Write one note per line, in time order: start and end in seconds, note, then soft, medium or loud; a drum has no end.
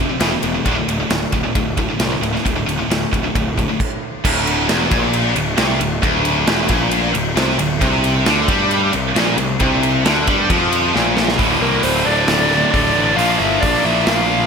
0.10 0.21 F2 medium
0.10 0.21 C3 medium
0.20 0.35 E1 medium
0.20 0.31 E2 medium
0.20 0.31 B2 medium
0.20 0.31 E3 medium
0.20 snare loud
0.20 ride medium
0.34 0.43 E2 medium
0.34 0.43 B2 medium
0.43 0.58 E1 medium
0.43 0.54 E2 medium
0.43 0.53 B2 medium
0.43 ride medium
0.54 0.65 E2 medium
0.54 0.65 B2 medium
0.65 0.81 D1 loud
0.65 0.75 D2 medium
0.65 0.76 A2 loud
0.65 0.76 D3 loud
0.65 kick loud
0.65 ride medium
0.77 0.87 D2 medium
0.77 0.87 A2 medium
0.88 1.03 D1 medium
0.88 0.99 D2 medium
0.88 0.99 A2 medium
0.88 ride medium
1.00 1.09 D2 medium
1.00 1.09 A2 medium
1.10 1.25 D1 medium
1.10 1.31 D2 medium
1.10 1.31 A2 medium
1.10 snare loud
1.10 ride medium
1.32 1.48 D1 medium
1.32 1.42 D2 medium
1.32 1.42 A2 medium
1.32 kick medium
1.32 ride medium
1.43 1.54 D2 medium
1.43 1.54 A2 medium
1.55 1.85 D1 medium
1.55 1.76 D2 medium
1.55 1.76 A2 medium
1.55 kick loud
1.55 ride medium
1.77 1.87 D2 medium
1.77 1.87 A2 medium
1.77 kick medium
1.77 ride medium
1.88 1.98 D2 medium
1.88 1.98 A2 medium
1.99 2.15 C2 medium
1.99 2.09 D2 medium
1.99 2.09 A2 medium
1.99 snare loud
1.99 ride medium
2.10 2.20 D2 medium
2.10 2.20 A2 medium
2.21 2.37 D1 medium
2.21 2.32 D2 medium
2.21 2.32 A2 medium
2.21 ride medium
2.33 2.43 D2 medium
2.33 2.44 A2 medium
2.33 snare soft
2.45 2.61 D1 medium
2.45 2.55 D2 medium
2.45 2.55 A2 medium
2.45 kick medium
2.45 ride medium
2.56 2.65 D2 medium
2.56 2.65 A2 medium
2.66 2.82 D1 medium
2.66 2.77 D2 medium
2.66 2.77 A2 medium
2.66 ride medium
2.78 2.89 D2 medium
2.78 2.90 A2 medium
2.89 3.04 D1 medium
2.89 3.10 D2 medium
2.89 3.11 A2 medium
2.89 snare loud
2.89 ride medium
3.12 3.27 D1 medium
3.12 3.23 D2 medium
3.12 3.22 A2 medium
3.12 kick medium
3.12 ride medium
3.23 3.34 D2 medium
3.23 3.35 A2 medium
3.35 3.65 D1 medium
3.35 3.55 D2 medium
3.35 3.55 A2 medium
3.35 kick loud
3.35 ride medium
3.57 3.68 D2 medium
3.57 3.67 A2 medium
3.57 kick medium
3.57 ride medium
3.68 3.80 D2 medium
3.68 3.80 A2 medium
3.80 kick loud
3.80 crash medium
4.24 4.66 D1 medium
4.24 4.68 D2 loud
4.24 kick loud
4.24 crash loud
4.47 ride medium
4.69 4.90 E1 loud
4.69 4.91 E2 loud
4.69 snare loud
4.69 ride loud
4.91 5.33 A#1 medium
4.91 5.35 A#2 loud
4.91 kick loud
4.91 ride medium
5.13 ride loud
5.36 5.57 D1 medium
5.36 5.54 D2 medium
5.36 ride medium
5.57 5.79 C2 medium
5.57 5.79 C3 loud
5.57 snare loud
5.57 ride loud
5.80 6.02 D1 medium
5.80 5.98 D2 medium
5.80 ride medium
6.02 6.45 D1 medium
6.02 6.46 D2 loud
6.02 kick loud
6.02 ride medium
6.25 ride medium
6.47 6.69 E1 loud
6.47 6.69 E2 loud
6.47 snare loud
6.47 ride loud
6.69 7.11 A#1 loud
6.69 7.13 A#2 loud
6.69 kick loud
6.69 ride medium
6.91 ride loud
7.14 7.35 D1 medium
7.14 7.32 D2 medium
7.14 ride medium
7.36 7.57 C2 medium
7.36 7.58 C3 loud
7.36 snare loud
7.36 ride loud
7.58 7.79 D1 medium
7.58 7.77 D2 medium
7.58 ride medium
7.81 8.23 C2 loud
7.81 8.25 C3 loud
7.81 kick loud
7.81 ride loud
8.04 ride medium
8.26 8.47 D2 loud
8.26 8.48 D3 medium
8.26 snare loud
8.26 ride loud
8.48 8.90 G2 medium
8.48 8.92 G3 loud
8.48 kick loud
8.48 ride medium
8.71 ride medium
8.93 9.15 C2 medium
8.93 9.11 C3 medium
8.93 ride medium
9.14 9.36 A#1 loud
9.14 9.37 A#2 loud
9.14 snare loud
9.14 ride loud
9.38 9.59 C2 medium
9.38 9.56 C3 medium
9.38 ride medium
9.60 10.02 C2 loud
9.60 10.04 C3 loud
9.60 kick loud
9.60 ride medium
9.83 ride medium
10.05 10.26 D2 loud
10.05 10.26 D3 loud
10.05 snare loud
10.05 ride loud
10.27 10.48 G2 medium
10.27 10.49 G3 loud
10.27 kick loud
10.27 ride medium
10.49 10.91 F2 medium
10.49 10.93 F3 loud
10.49 kick loud
10.49 ride loud
10.72 ride medium
10.94 11.36 A#1 medium
10.94 11.38 A#2 loud
10.94 snare medium
11.17 snare loud
11.28 snare medium
11.38 11.57 D1 loud
11.38 12.94 D2 medium
11.38 12.94 A2 loud
11.38 12.94 D3 loud
11.38 kick loud
11.38 open hi-hat medium
11.61 11.79 C2 loud
11.61 11.82 A#3 medium
11.61 11.82 A#4 medium
11.83 12.02 D1 medium
11.83 12.05 C4 medium
11.83 12.06 C5 medium
11.83 open hi-hat medium
12.05 12.24 D1 medium
12.05 13.17 D2 medium
12.05 13.17 A2 medium
12.05 13.16 D3 medium
12.05 12.68 D4 medium
12.05 12.69 D5 loud
12.28 12.64 D1 medium
12.28 snare loud
12.28 open hi-hat medium
12.51 snare soft
12.70 13.13 D4 medium
12.70 13.14 D5 loud
12.74 12.91 D1 medium
12.74 kick medium
12.74 open hi-hat medium
12.95 13.13 A1 medium
12.95 13.17 D2 medium
12.95 13.17 A2 medium
12.95 13.17 D3 medium
13.14 13.35 A#1 loud
13.14 14.47 A#2 medium
13.14 13.36 F4 medium
13.14 13.38 F5 loud
13.14 open hi-hat soft
13.19 14.47 F3 loud
13.19 14.47 A#3 loud
13.37 13.58 G1 loud
13.37 13.59 E4 loud
13.37 13.60 E5 medium
13.59 13.81 A#1 loud
13.59 13.82 D4 medium
13.59 13.85 D5 loud
13.59 kick medium
13.59 open hi-hat medium
13.82 14.03 A#1 medium
13.82 14.47 A#3 medium
13.82 14.04 E4 medium
13.82 14.06 E5 medium
13.86 14.47 A#2 medium
13.86 14.47 F3 medium
14.06 14.43 A#1 medium
14.06 14.47 F4 medium
14.06 14.47 F5 medium
14.06 snare loud
14.06 open hi-hat medium